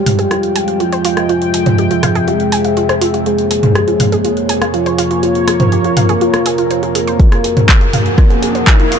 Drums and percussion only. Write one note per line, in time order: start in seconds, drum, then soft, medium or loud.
0.06 mid tom medium
0.06 open hi-hat loud
0.19 closed hi-hat soft
0.31 cross-stick soft
0.31 closed hi-hat soft
0.43 closed hi-hat soft
0.56 open hi-hat loud
0.68 closed hi-hat soft
0.80 closed hi-hat soft
0.92 closed hi-hat soft
1.05 open hi-hat loud
1.17 cross-stick soft
1.17 closed hi-hat soft
1.29 closed hi-hat soft
1.42 closed hi-hat soft
1.54 open hi-hat loud
1.66 closed hi-hat soft
1.66 mid tom medium
1.78 closed hi-hat soft
1.91 closed hi-hat soft
2.03 cross-stick medium
2.03 mid tom medium
2.03 open hi-hat loud
2.15 closed hi-hat soft
2.28 closed hi-hat soft
2.40 closed hi-hat soft
2.52 open hi-hat loud
2.65 closed hi-hat soft
2.77 closed hi-hat soft
2.89 cross-stick soft
2.89 closed hi-hat soft
3.02 open hi-hat loud
3.14 closed hi-hat soft
3.26 closed hi-hat soft
3.38 closed hi-hat soft
3.51 open hi-hat loud
3.63 closed hi-hat soft
3.63 mid tom medium
3.75 cross-stick medium
3.75 closed hi-hat soft
3.88 closed hi-hat soft
4.00 mid tom medium
4.00 open hi-hat loud
4.12 closed hi-hat soft
4.25 closed hi-hat soft
4.37 closed hi-hat soft
4.49 open hi-hat loud
4.62 cross-stick medium
4.62 closed hi-hat soft
4.74 closed hi-hat soft
4.86 closed hi-hat soft
4.98 open hi-hat loud
5.11 closed hi-hat soft
5.23 closed hi-hat soft
5.35 closed hi-hat soft
5.48 cross-stick medium
5.48 open hi-hat loud
5.60 closed hi-hat soft
5.60 mid tom medium
5.72 closed hi-hat soft
5.84 closed hi-hat soft
5.97 mid tom medium
5.97 open hi-hat loud
6.09 closed hi-hat soft
6.21 closed hi-hat soft
6.34 cross-stick medium
6.34 closed hi-hat soft
6.46 open hi-hat loud
6.58 closed hi-hat soft
6.71 closed hi-hat soft
6.83 closed hi-hat soft
6.95 open hi-hat loud
7.07 closed hi-hat soft
7.20 kick loud
7.20 closed hi-hat soft
7.32 cross-stick medium
7.32 closed hi-hat soft
7.44 open hi-hat loud
7.57 closed hi-hat soft
7.57 mid tom medium
7.69 kick loud
7.69 clap loud
7.69 closed hi-hat soft
7.81 closed hi-hat soft
7.93 mid tom medium
7.93 open hi-hat loud
8.06 closed hi-hat soft
8.18 kick loud
8.18 cross-stick medium
8.18 closed hi-hat soft
8.30 closed hi-hat soft
8.43 open hi-hat loud
8.55 closed hi-hat soft
8.67 kick loud
8.67 clap loud
8.67 closed hi-hat soft
8.80 closed hi-hat soft
8.92 open hi-hat loud